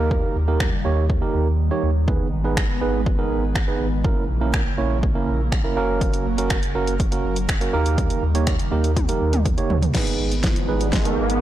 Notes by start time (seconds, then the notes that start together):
Already playing: D#2 D#3 G3 A#3 D#4 G4 A#4
0.11 kick
0.36 D#2
0.48 A#3 D#4 G4 A#4
0.60 finger snap, kick
0.85 D#2 A#3 D#4 G4 C#5
1.10 kick
1.21 A#3 D#4 G4 A#4
1.34 D#2
1.71 A#3 D#4 G4 C#5
1.83 D#2
2.08 G#3 B3 D#4 G#4 B4, kick
2.32 G#1
2.44 B3 D#4 G#4 B4
2.57 finger snap, kick
2.81 G#1 B3 D#4 G#4 B4
3.06 kick
3.18 B3 D#4 G#4 A#4
3.31 G#1
3.55 finger snap, kick
3.67 B3 D#4 G#4 B4
3.80 G#1
4.04 C#3 E3 A#3 C#4 E4 A#4, kick
4.29 A#1
4.41 A#3 C#4 E4 A#4
4.54 finger snap, kick
4.78 A#1 A#3 C#4 E4 C#5
5.03 kick
5.15 A#3 C#4 E4 A#4
5.28 A#1
5.52 finger snap, kick
5.64 A#3 C#4 E4 A#4
5.76 F#1 C#3 F#3 A#3 C#4 F#4 A#4
6.01 kick, closed hi-hat
6.14 closed hi-hat
6.26 F#1
6.38 A#3 C#4 F#4 A#4, closed hi-hat
6.50 finger snap, kick, closed hi-hat
6.63 closed hi-hat
6.75 F#1 A#3 C#4 F#4 A#4
6.87 closed hi-hat
7.00 kick, closed hi-hat
7.12 A#3 C#4 F#4 A#4, closed hi-hat
7.24 F#1
7.36 closed hi-hat
7.49 finger snap, kick, closed hi-hat
7.61 A#3 C#4 F#4 A#4, closed hi-hat
7.73 D#2 D#3 G3 A#3 D#4 G4 A#4
7.86 closed hi-hat
7.98 kick, closed hi-hat
8.10 closed hi-hat
8.22 D#2
8.35 A#3 D#4 G4 C#5, closed hi-hat
8.47 finger snap, kick, closed hi-hat
8.59 closed hi-hat
8.71 D#2 A#3 D#4 G4 A#4
8.84 closed hi-hat
8.96 kick, closed hi-hat, high tom
9.08 A#3 D#4 G4 A#4, closed hi-hat
9.21 D#2
9.33 closed hi-hat, mid tom
9.46 kick, closed hi-hat
9.57 A#3 D#4 G4 C#5, closed hi-hat
9.70 D#2, floor tom
9.82 closed hi-hat, floor tom
9.94 D#3 G#3 B3 D#4 G#4 B4, kick, snare, closed hi-hat, crash, riser
10.07 closed hi-hat
10.19 G#1
10.32 closed hi-hat
10.44 kick, snare, closed hi-hat
10.56 closed hi-hat
10.68 G#1 B3 D#4 G#4 B4
10.81 closed hi-hat
10.93 kick, snare, closed hi-hat
11.05 B3 D#4 G#4 A#4, closed hi-hat
11.18 G#1
11.30 closed hi-hat